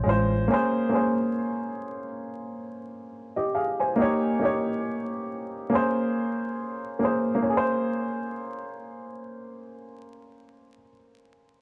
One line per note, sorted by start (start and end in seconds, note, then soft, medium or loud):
0.00 0.04 G#3 medium
0.00 0.35 G#3 medium
0.00 0.06 C#4 medium
0.00 0.07 F4 medium
0.00 0.09 C5 medium
0.06 0.47 A1 medium
0.06 0.36 C#4 medium
0.06 0.37 F4 medium
0.06 0.38 C5 loud
0.48 0.79 A#3 medium
0.48 0.80 C#4 medium
0.48 0.81 G#4 medium
0.54 0.82 C5 loud
0.89 2.03 A#3 medium
0.89 2.04 C#4 medium
0.89 2.05 G#4 medium
0.95 2.06 C5 medium
3.36 3.53 G4 medium
3.36 3.53 D#5 medium
3.55 3.79 G#4 medium
3.55 3.78 F5 medium
3.80 4.21 C5 medium
3.80 4.21 G#5 medium
3.96 4.27 A#3 medium
3.96 4.28 D#4 medium
3.96 4.29 G4 medium
4.02 4.29 C#5 loud
4.39 5.52 A#3 medium
4.39 5.53 D#4 medium
4.39 5.54 G4 medium
4.45 5.55 C#5 medium
5.70 6.78 A#3 medium
5.70 6.79 C#4 medium
5.70 6.80 G#4 medium
5.75 6.81 C5 loud
6.99 7.30 A#3 medium
6.99 7.31 C#4 medium
6.99 7.32 G#4 medium
7.05 7.33 C5 medium
7.35 10.74 A#3 medium
7.42 10.82 C#4 medium
7.50 10.89 G#4 medium
7.57 10.96 C5 medium